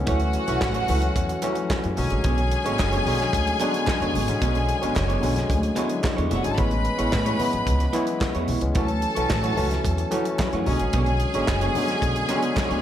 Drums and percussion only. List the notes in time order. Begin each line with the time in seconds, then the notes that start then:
0.07 kick, closed hi-hat
0.20 closed hi-hat
0.33 closed hi-hat
0.48 closed hi-hat
0.61 kick, snare, clap, muted conga
0.74 closed hi-hat
0.88 open hi-hat, high conga, low conga
1.02 closed hi-hat
1.16 kick, closed hi-hat, muted conga
1.29 closed hi-hat, muted conga
1.42 clap, closed hi-hat, high conga
1.55 closed hi-hat
1.70 kick, snare, clap, muted conga, high conga
1.84 closed hi-hat, muted conga
1.97 open hi-hat, low conga
2.10 closed hi-hat
2.24 kick, closed hi-hat
2.38 closed hi-hat
2.52 closed hi-hat
2.66 closed hi-hat
2.79 kick, snare, clap
2.93 closed hi-hat, muted conga
3.06 open hi-hat, high conga, low conga
3.20 snare, closed hi-hat
3.33 kick, closed hi-hat, muted conga
3.47 closed hi-hat
3.60 clap, closed hi-hat, high conga
3.74 closed hi-hat
3.87 kick, snare, clap, muted conga, high conga
3.90 clap
4.02 closed hi-hat, muted conga
4.14 open hi-hat, low conga
4.28 closed hi-hat
4.42 kick, closed hi-hat
4.55 closed hi-hat, muted conga
4.69 closed hi-hat
4.83 closed hi-hat
4.96 kick, snare, clap
4.97 clap
5.10 closed hi-hat
5.23 open hi-hat, high conga, low conga
5.36 snare, closed hi-hat, low conga
5.50 kick, closed hi-hat, muted conga
5.63 closed hi-hat
5.76 clap, closed hi-hat, high conga
5.89 closed hi-hat
6.03 kick, snare, clap, muted conga, high conga
6.06 clap
6.18 closed hi-hat, muted conga
6.31 closed hi-hat, low conga
6.44 closed hi-hat
6.58 kick, closed hi-hat
6.71 closed hi-hat, muted conga
6.85 closed hi-hat
6.99 closed hi-hat
7.12 kick, snare, clap, muted conga
7.26 closed hi-hat, muted conga
7.39 open hi-hat, high conga, low conga
7.53 closed hi-hat
7.67 kick, closed hi-hat
7.80 closed hi-hat
7.93 clap, closed hi-hat, high conga
8.07 closed hi-hat
8.21 kick, snare, clap, muted conga, high conga
8.23 clap
8.35 closed hi-hat, muted conga
8.48 open hi-hat, low conga
8.61 closed hi-hat
8.75 kick, closed hi-hat
8.88 closed hi-hat, muted conga
9.02 closed hi-hat
9.16 closed hi-hat
9.30 kick, snare, clap
9.44 closed hi-hat, muted conga
9.57 open hi-hat, high conga, low conga
9.71 snare, closed hi-hat
9.85 kick, closed hi-hat
9.98 closed hi-hat, muted conga
10.12 clap, closed hi-hat, high conga
10.25 closed hi-hat
10.38 kick, snare, clap, muted conga, high conga
10.41 clap
10.53 closed hi-hat, muted conga
10.66 open hi-hat, low conga
10.80 closed hi-hat
10.93 kick, closed hi-hat
11.06 closed hi-hat, muted conga
11.20 closed hi-hat
11.34 closed hi-hat
11.47 kick, snare, clap, muted conga
11.61 closed hi-hat
11.75 open hi-hat, high conga, low conga
11.88 snare, closed hi-hat
12.02 kick, closed hi-hat
12.16 closed hi-hat, muted conga
12.29 clap, closed hi-hat, high conga
12.43 closed hi-hat
12.56 kick, snare, clap, muted conga, high conga
12.59 clap
12.71 closed hi-hat